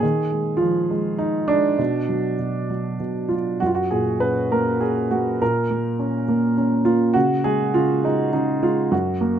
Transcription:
0.00 1.75 D#3 medium
0.00 0.61 G#4 medium
0.32 0.89 G#3 soft
0.57 1.20 F4 medium
0.61 1.76 F3 medium
0.91 1.48 G#3 soft
1.18 1.50 D#4 medium
1.48 1.78 G#3 soft
1.48 3.35 D4 medium
1.79 2.38 B2 medium
2.09 2.69 F#3 soft
2.39 2.99 B2 soft
2.70 3.30 F#3 soft
3.00 3.59 B2 soft
3.29 3.60 F#3 soft
3.29 3.61 F4 medium
3.60 5.38 F#2 soft
3.60 3.68 F#4 medium
3.66 3.74 F4 medium
3.75 3.91 F#4 medium
3.91 5.08 A#2 soft
3.91 4.22 G#4 medium
4.20 4.81 C#4 soft
4.20 4.52 B4 medium
4.52 5.10 A#3 soft
4.52 4.82 A#4 medium
4.81 5.40 C#4 soft
4.81 5.09 G#4 medium
5.11 5.41 A#3 soft
5.11 5.39 F#4 medium
5.42 7.12 A#2 medium
5.42 6.54 A#4 medium
5.71 6.27 A#3 soft
5.99 6.56 C#4 soft
6.28 6.85 A#3 soft
6.57 7.14 C#4 soft
6.85 7.14 A#3 soft
6.85 7.13 F4 medium
7.14 7.73 C#3 medium
7.14 7.45 F#4 medium
7.44 8.02 G#3 medium
7.44 7.72 G#4 medium
7.74 8.32 C#3 medium
7.74 8.05 F4 medium
8.04 8.61 G#3 medium
8.04 8.31 D#4 medium
8.33 8.90 C#3 medium
8.33 8.63 D#4 medium
8.63 8.91 G#3 medium
8.63 8.93 F4 medium
8.91 9.39 F#2 medium
8.91 9.39 F#4 medium
9.21 9.39 A#3 medium

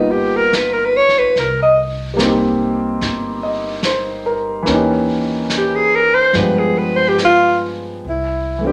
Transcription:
0.00 1.32 G1 medium
0.00 1.36 G3 soft
0.00 1.37 A#3 soft
0.00 1.37 B3 soft
0.00 0.13 D#4 medium
0.00 1.37 D#4 soft
0.00 1.37 F4 medium
0.11 0.38 G4 medium
0.36 0.57 A#4 medium
0.53 0.75 B4 medium
0.53 snare soft
0.53 hi-hat pedal soft
0.73 0.87 A#4 medium
0.85 0.98 B4 medium
0.97 1.20 C#5 loud
1.08 snare soft
1.19 1.41 B4 medium
1.36 2.97 C2 medium
1.36 1.62 A#4 medium
1.36 brush sweep soft
1.36 snare soft
1.63 1.80 D#5 medium
2.14 4.65 G3 medium
2.14 4.64 A#3 medium
2.19 4.67 C4 medium
2.19 snare medium
2.19 hi-hat pedal medium
2.23 4.69 D#4 medium
2.23 4.70 G4 medium
3.01 4.64 G1 medium
3.01 brush sweep soft
3.01 snare soft
3.43 4.01 D#5 soft
3.83 4.50 C5 medium
3.83 snare medium
3.83 hi-hat pedal medium
4.26 4.84 A#4 medium
4.63 6.32 E3 medium
4.63 6.33 A#3 medium
4.63 brush sweep soft
4.63 snare soft
4.67 6.30 D#2 medium
4.67 6.34 C#4 medium
4.71 6.36 D#4 medium
4.71 6.37 G4 medium
5.50 snare medium
5.50 hi-hat pedal medium
5.58 5.77 G4 medium
5.75 5.97 G#4 medium
5.96 6.16 A#4 loud
6.15 6.38 C5 loud
6.33 8.00 G2 medium
6.33 8.03 F3 medium
6.33 8.04 G#3 soft
6.33 8.04 B3 soft
6.33 8.05 D4 soft
6.33 6.61 B4 medium
6.33 brush sweep soft
6.33 snare soft
6.38 8.06 G4 medium
6.59 6.80 G#4 medium
6.79 6.98 B4 medium
6.96 7.10 C5 medium
7.09 7.18 G4 medium
7.18 snare soft
7.18 hi-hat pedal medium
7.25 7.58 F4 loud
8.03 8.72 C2 medium
8.03 brush sweep soft
8.09 8.68 E4 medium
8.58 8.72 E3 soft
8.58 8.72 A3 soft
8.64 8.72 C4 soft
8.64 8.72 D4 soft
8.64 8.72 G4 medium

